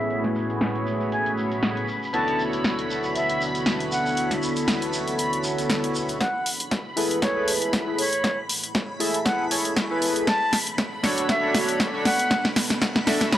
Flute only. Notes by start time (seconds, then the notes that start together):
Already playing: E5
1.12 G#5
2.14 A5
3.15 E5
3.92 F#5
5.19 B5
6.21 F#5
7.22 C#5
7.99 C#5
9.26 F#5
10.27 A5
11.29 E5
12.05 F#5
13.32 B5